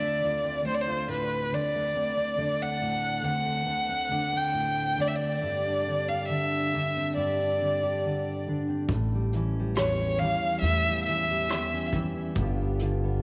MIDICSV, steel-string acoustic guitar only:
0, 0, Header, 1, 2, 480
1, 0, Start_track
1, 0, Tempo, 867052
1, 1081, Time_signature, 4, 2, 24, 8
1, 7319, End_track
2, 0, Start_track
2, 0, Title_t, "Steel-string acoustic guitar"
2, 0, Program_c, 0, 25
2, 0, Note_on_c, 0, 38, 48
2, 0, Note_on_c, 0, 50, 51
2, 0, Note_on_c, 0, 60, 47
2, 0, Note_on_c, 0, 65, 45
2, 9, Note_on_c, 0, 57, 50
2, 122, Note_off_c, 0, 38, 0
2, 123, Note_off_c, 0, 65, 0
2, 124, Note_on_c, 0, 38, 53
2, 129, Note_on_c, 0, 65, 48
2, 241, Note_off_c, 0, 60, 0
2, 244, Note_on_c, 0, 60, 44
2, 354, Note_off_c, 0, 50, 0
2, 356, Note_off_c, 0, 57, 0
2, 360, Note_on_c, 0, 50, 50
2, 363, Note_on_c, 0, 57, 46
2, 479, Note_off_c, 0, 65, 0
2, 485, Note_on_c, 0, 65, 57
2, 598, Note_on_c, 0, 45, 43
2, 836, Note_off_c, 0, 50, 0
2, 839, Note_off_c, 0, 45, 0
2, 843, Note_on_c, 0, 50, 47
2, 846, Note_off_c, 0, 60, 0
2, 849, Note_on_c, 0, 60, 44
2, 961, Note_off_c, 0, 57, 0
2, 971, Note_on_c, 0, 57, 49
2, 1054, Note_off_c, 0, 65, 0
2, 1057, Note_off_c, 0, 57, 0
2, 1077, Note_off_c, 0, 38, 0
2, 1082, Note_off_c, 0, 60, 0
2, 1084, Note_on_c, 0, 38, 54
2, 1085, Note_on_c, 0, 60, 51
2, 1200, Note_off_c, 0, 60, 0
2, 1202, Note_on_c, 0, 60, 47
2, 1313, Note_off_c, 0, 50, 0
2, 1319, Note_on_c, 0, 50, 50
2, 1319, Note_on_c, 0, 57, 45
2, 1442, Note_off_c, 0, 60, 0
2, 1444, Note_on_c, 0, 60, 49
2, 1559, Note_on_c, 0, 45, 53
2, 1783, Note_off_c, 0, 50, 0
2, 1790, Note_on_c, 0, 50, 52
2, 1794, Note_off_c, 0, 60, 0
2, 1797, Note_on_c, 0, 60, 54
2, 1799, Note_off_c, 0, 45, 0
2, 1907, Note_off_c, 0, 57, 0
2, 1914, Note_on_c, 0, 57, 48
2, 2020, Note_off_c, 0, 38, 0
2, 2026, Note_on_c, 0, 38, 54
2, 2027, Note_off_c, 0, 60, 0
2, 2030, Note_on_c, 0, 60, 47
2, 2146, Note_off_c, 0, 60, 0
2, 2152, Note_on_c, 0, 60, 52
2, 2270, Note_off_c, 0, 50, 0
2, 2270, Note_off_c, 0, 57, 0
2, 2277, Note_on_c, 0, 50, 52
2, 2278, Note_on_c, 0, 57, 43
2, 2390, Note_off_c, 0, 60, 0
2, 2396, Note_on_c, 0, 60, 57
2, 2512, Note_on_c, 0, 45, 46
2, 2747, Note_off_c, 0, 50, 0
2, 2753, Note_off_c, 0, 60, 0
2, 2753, Note_on_c, 0, 50, 49
2, 2755, Note_off_c, 0, 45, 0
2, 2759, Note_on_c, 0, 60, 47
2, 2872, Note_off_c, 0, 57, 0
2, 2878, Note_on_c, 0, 57, 47
2, 2970, Note_off_c, 0, 57, 0
2, 2970, Note_off_c, 0, 60, 0
2, 2992, Note_off_c, 0, 38, 0
2, 3000, Note_on_c, 0, 43, 53
2, 3007, Note_on_c, 0, 67, 51
2, 3129, Note_on_c, 0, 62, 43
2, 3236, Note_off_c, 0, 50, 0
2, 3251, Note_on_c, 0, 50, 47
2, 3254, Note_on_c, 0, 60, 42
2, 3363, Note_off_c, 0, 67, 0
2, 3371, Note_on_c, 0, 67, 43
2, 3476, Note_off_c, 0, 50, 0
2, 3483, Note_on_c, 0, 50, 49
2, 3723, Note_off_c, 0, 50, 0
2, 3724, Note_off_c, 0, 62, 0
2, 3730, Note_on_c, 0, 50, 51
2, 3736, Note_on_c, 0, 62, 46
2, 3847, Note_off_c, 0, 60, 0
2, 3858, Note_on_c, 0, 60, 44
2, 3958, Note_off_c, 0, 43, 0
2, 3965, Note_on_c, 0, 43, 55
2, 3966, Note_off_c, 0, 67, 0
2, 3973, Note_on_c, 0, 67, 48
2, 4088, Note_off_c, 0, 62, 0
2, 4100, Note_on_c, 0, 62, 42
2, 4206, Note_off_c, 0, 50, 0
2, 4210, Note_off_c, 0, 60, 0
2, 4212, Note_on_c, 0, 50, 51
2, 4215, Note_on_c, 0, 60, 41
2, 4328, Note_off_c, 0, 67, 0
2, 4334, Note_on_c, 0, 67, 55
2, 4451, Note_off_c, 0, 50, 0
2, 4457, Note_on_c, 0, 50, 46
2, 4686, Note_off_c, 0, 50, 0
2, 4692, Note_off_c, 0, 62, 0
2, 4693, Note_on_c, 0, 50, 45
2, 4698, Note_on_c, 0, 62, 45
2, 4803, Note_off_c, 0, 60, 0
2, 4810, Note_on_c, 0, 60, 46
2, 4897, Note_off_c, 0, 43, 0
2, 4898, Note_off_c, 0, 60, 0
2, 4901, Note_off_c, 0, 67, 0
2, 4902, Note_off_c, 0, 62, 0
2, 4929, Note_off_c, 0, 50, 0
2, 4931, Note_on_c, 0, 45, 59
2, 5064, Note_on_c, 0, 55, 44
2, 5177, Note_on_c, 0, 52, 49
2, 5178, Note_on_c, 0, 61, 49
2, 5308, Note_off_c, 0, 55, 0
2, 5311, Note_on_c, 0, 55, 46
2, 5408, Note_off_c, 0, 45, 0
2, 5408, Note_on_c, 0, 40, 46
2, 5412, Note_on_c, 0, 67, 51
2, 5531, Note_off_c, 0, 61, 0
2, 5543, Note_on_c, 0, 61, 47
2, 5650, Note_off_c, 0, 52, 0
2, 5654, Note_off_c, 0, 55, 0
2, 5656, Note_on_c, 0, 52, 55
2, 5657, Note_on_c, 0, 55, 49
2, 5774, Note_off_c, 0, 61, 0
2, 5782, Note_on_c, 0, 61, 51
2, 5886, Note_off_c, 0, 40, 0
2, 5890, Note_on_c, 0, 45, 56
2, 6022, Note_off_c, 0, 55, 0
2, 6024, Note_on_c, 0, 55, 49
2, 6131, Note_off_c, 0, 52, 0
2, 6133, Note_off_c, 0, 61, 0
2, 6139, Note_on_c, 0, 52, 54
2, 6143, Note_on_c, 0, 61, 50
2, 6257, Note_off_c, 0, 55, 0
2, 6259, Note_on_c, 0, 55, 51
2, 6367, Note_off_c, 0, 45, 0
2, 6373, Note_off_c, 0, 67, 0
2, 6374, Note_on_c, 0, 40, 47
2, 6375, Note_on_c, 0, 67, 52
2, 6489, Note_off_c, 0, 61, 0
2, 6496, Note_on_c, 0, 61, 49
2, 6605, Note_off_c, 0, 52, 0
2, 6612, Note_on_c, 0, 52, 49
2, 6614, Note_off_c, 0, 55, 0
2, 6616, Note_on_c, 0, 55, 48
2, 6729, Note_off_c, 0, 61, 0
2, 6735, Note_on_c, 0, 61, 48
2, 6819, Note_off_c, 0, 52, 0
2, 6820, Note_off_c, 0, 40, 0
2, 6820, Note_off_c, 0, 61, 0
2, 6851, Note_on_c, 0, 43, 63
2, 6859, Note_on_c, 0, 50, 53
2, 6861, Note_off_c, 0, 55, 0
2, 6863, Note_on_c, 0, 59, 45
2, 6864, Note_on_c, 0, 65, 46
2, 6865, Note_off_c, 0, 67, 0
2, 6868, Note_on_c, 0, 67, 57
2, 6973, Note_off_c, 0, 59, 0
2, 6983, Note_on_c, 0, 59, 51
2, 7090, Note_off_c, 0, 50, 0
2, 7093, Note_off_c, 0, 65, 0
2, 7096, Note_on_c, 0, 50, 55
2, 7101, Note_on_c, 0, 65, 49
2, 7212, Note_off_c, 0, 59, 0
2, 7219, Note_on_c, 0, 59, 49
2, 7319, Note_off_c, 0, 43, 0
2, 7319, Note_off_c, 0, 50, 0
2, 7319, Note_off_c, 0, 59, 0
2, 7319, Note_off_c, 0, 65, 0
2, 7319, Note_off_c, 0, 67, 0
2, 7319, End_track
0, 0, End_of_file